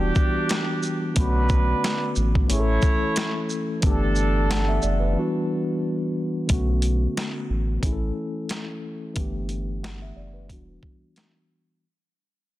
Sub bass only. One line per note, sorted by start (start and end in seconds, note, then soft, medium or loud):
0.00 0.12 E1 loud
1.17 1.74 B1 loud
2.16 2.45 A1 loud
2.50 2.79 A1 loud
3.83 4.79 G1 loud
4.83 5.16 F#1 loud
6.50 7.07 B1 loud
7.50 7.78 A1 medium
7.83 8.12 A1 loud
9.16 10.12 G1 loud
10.16 10.51 F#1 medium
10.49 10.78 E1 loud